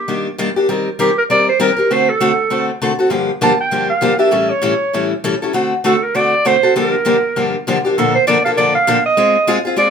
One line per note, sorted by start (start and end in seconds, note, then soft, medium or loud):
0.00 0.27 G4 medium
0.08 0.27 D#3 medium
0.08 0.27 G3 medium
0.08 0.27 A#3 medium
0.08 0.27 D4 medium
0.08 0.27 G4 medium
0.38 0.49 D#3 medium
0.38 0.49 G3 medium
0.38 0.49 A#3 medium
0.38 0.49 D4 medium
0.38 0.49 G4 medium
0.56 0.69 A#3 soft
0.56 0.69 D4 soft
0.56 0.68 G4 medium
0.69 0.88 D#3 medium
0.69 0.88 G3 medium
0.69 0.88 C4 medium
0.69 0.88 G4 medium
0.69 0.88 A#4 medium
0.99 1.09 D#3 medium
0.99 1.09 G3 medium
0.99 1.09 C4 medium
0.99 1.10 G4 medium
0.99 1.16 G4 medium
0.99 1.10 A#4 medium
1.18 1.23 A#4 medium
1.30 1.49 D#3 medium
1.30 1.49 G3 medium
1.30 1.49 C4 medium
1.30 1.49 G4 medium
1.30 1.49 A#4 medium
1.30 1.46 D5 loud
1.49 1.60 C5 medium
1.60 1.70 D#3 medium
1.60 1.70 G3 medium
1.60 1.70 C4 medium
1.60 1.70 G4 medium
1.60 1.70 A#4 medium
1.60 1.94 A#4 medium
1.77 1.89 C4 soft
1.77 1.90 G4 soft
1.77 1.89 A#4 medium
1.91 2.09 D3 medium
1.91 2.09 A3 medium
1.91 2.09 C4 medium
1.91 2.10 F#4 medium
1.91 2.10 A4 medium
1.91 2.11 C5 medium
2.10 2.69 A4 medium
2.20 2.31 D3 medium
2.20 2.31 A3 medium
2.20 2.31 C4 medium
2.20 2.31 F#4 medium
2.20 2.31 A4 medium
2.50 2.69 D3 medium
2.50 2.69 A3 medium
2.50 2.70 C4 medium
2.50 2.70 F#4 medium
2.50 2.70 A4 medium
2.82 2.92 D3 medium
2.82 2.92 A3 medium
2.82 2.92 C4 medium
2.82 2.92 F#4 medium
2.82 2.92 A4 medium
2.99 3.10 C4 soft
2.99 3.11 F#4 soft
2.99 3.11 A4 medium
3.10 3.30 G2 medium
3.10 3.30 D3 medium
3.10 3.30 F3 medium
3.10 3.30 A#3 medium
3.10 3.30 D4 medium
3.10 3.30 G4 medium
3.41 3.52 G2 medium
3.41 3.52 D3 medium
3.41 3.52 F3 medium
3.41 3.52 A#3 medium
3.41 3.52 D4 medium
3.41 3.52 G4 loud
3.41 3.59 A5 loud
3.60 3.88 G5 medium
3.71 3.91 G2 medium
3.71 3.91 D3 medium
3.71 3.91 F3 medium
3.71 3.91 A#3 medium
3.71 3.91 D4 medium
3.71 3.91 G4 medium
3.90 4.18 F5 medium
4.01 4.12 G2 medium
4.01 4.12 D3 medium
4.01 4.12 F3 medium
4.01 4.12 A#3 medium
4.01 4.13 D4 medium
4.01 4.12 G4 medium
4.19 4.31 F3 soft
4.19 4.31 A#3 soft
4.19 4.32 D4 medium
4.19 4.31 G4 medium
4.19 4.51 E5 medium
4.31 4.51 A2 medium
4.31 4.51 E3 medium
4.31 4.51 G3 medium
4.31 4.51 C#4 medium
4.31 4.51 E4 medium
4.31 4.51 A4 medium
4.50 5.10 C#5 medium
4.62 4.72 A2 medium
4.62 4.73 E3 medium
4.62 4.73 G3 medium
4.62 4.73 C#4 medium
4.62 4.73 E4 medium
4.62 4.73 A4 medium
4.93 5.12 A2 medium
4.93 5.13 E3 medium
4.93 5.13 G3 medium
4.93 5.13 C#4 medium
4.93 5.13 E4 medium
4.93 5.13 A4 medium
5.24 5.34 A2 medium
5.24 5.34 E3 medium
5.24 5.34 G3 medium
5.24 5.34 C#4 medium
5.24 5.34 E4 medium
5.24 5.34 A4 medium
5.42 5.54 G3 soft
5.42 5.54 C#4 soft
5.42 5.54 E4 soft
5.42 5.53 A4 medium
5.53 5.72 D3 medium
5.53 5.73 A3 medium
5.53 5.73 C4 medium
5.53 5.73 F#4 medium
5.53 5.73 A4 medium
5.84 5.94 D3 medium
5.84 5.94 A3 medium
5.84 5.95 C4 medium
5.84 5.95 F#4 medium
5.84 6.05 A4 medium
5.84 5.95 A4 medium
6.03 6.17 A#4 medium
6.14 6.33 D3 medium
6.14 6.34 A3 medium
6.14 6.34 C4 medium
6.14 6.34 F#4 medium
6.14 6.34 A4 medium
6.14 6.48 D5 loud
6.45 6.55 D3 medium
6.45 6.55 A3 medium
6.45 6.55 C4 medium
6.45 6.55 F#4 medium
6.45 6.56 A4 medium
6.45 6.76 C5 medium
6.63 6.75 C4 soft
6.63 6.75 F#4 soft
6.63 6.75 A4 medium
6.76 6.94 G2 medium
6.76 6.94 D3 medium
6.76 6.94 F3 medium
6.76 6.95 A#3 medium
6.76 6.95 D4 medium
6.76 6.95 G4 medium
6.76 7.62 A#4 medium
7.05 7.15 G2 medium
7.05 7.16 D3 medium
7.05 7.16 F3 medium
7.05 7.16 A#3 medium
7.05 7.16 D4 medium
7.05 7.16 G4 medium
7.36 7.55 G2 medium
7.36 7.55 D3 medium
7.36 7.55 F3 medium
7.36 7.55 A#3 medium
7.36 7.55 D4 medium
7.36 7.55 G4 medium
7.67 7.77 G2 medium
7.67 7.77 D3 medium
7.67 7.77 F3 medium
7.67 7.77 A#3 medium
7.67 7.77 D4 medium
7.67 7.77 G4 medium
7.85 7.97 F3 soft
7.85 7.97 A#3 soft
7.85 7.97 D4 soft
7.85 7.96 G4 soft
7.97 8.16 A#2 medium
7.97 8.16 D3 medium
7.97 8.16 F3 medium
7.97 8.16 A#3 medium
7.97 8.16 D4 medium
7.97 8.13 A4 medium
7.97 8.17 A4 medium
8.15 8.26 C5 medium
8.27 8.37 A#2 medium
8.27 8.37 D3 medium
8.27 8.37 F3 medium
8.27 8.37 A#3 medium
8.27 8.38 D4 medium
8.27 8.37 A4 loud
8.27 8.43 D5 medium
8.45 8.57 F3 soft
8.45 8.57 A#3 medium
8.45 8.57 D4 soft
8.45 8.57 A4 medium
8.45 8.50 F5 medium
8.57 8.76 A#2 medium
8.57 8.76 D3 medium
8.57 8.76 F3 medium
8.57 8.76 A#3 medium
8.57 8.76 D4 medium
8.57 8.76 A4 medium
8.57 8.73 D5 medium
8.75 9.03 F5 loud
8.87 8.97 A#2 loud
8.87 8.97 D3 medium
8.87 8.97 F3 medium
8.87 8.98 A#3 medium
8.87 8.98 D4 loud
8.87 8.97 A4 loud
9.06 9.61 D#5 medium
9.17 9.36 G#3 medium
9.17 9.36 C4 medium
9.17 9.36 F4 medium
9.17 9.36 G#4 medium
9.47 9.57 G#3 medium
9.47 9.58 C4 loud
9.47 9.58 F4 medium
9.47 9.58 G#4 medium
9.65 9.76 C4 soft
9.65 9.76 F4 medium
9.65 9.77 G#4 medium
9.77 9.90 G#3 medium
9.77 9.90 C4 medium
9.77 9.90 F4 medium
9.77 9.90 G#4 medium
9.77 9.90 D5 loud